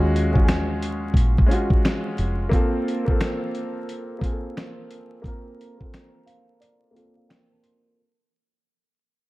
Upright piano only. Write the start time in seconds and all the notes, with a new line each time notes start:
Already playing: G#3 C#4 F4 F#4
0.32 G#3 C#4
0.36 F4 F#4
0.44 G#4
1.46 G#3 C#4
1.51 F4 F#4
2.49 A#3 C4
2.53 F4 A4
3.05 A#3 C4 F4
3.11 A4
4.19 A#3 C4
4.23 F4 G#4
4.32 A4
5.22 A#3 C4 F4
5.28 A#4
5.78 A#3 C4 F4
5.84 A4
6.26 F5
6.61 D5
6.91 A#3 C4
6.95 F4 A4
7.16 F5
7.29 G5
7.52 A5
7.63 C6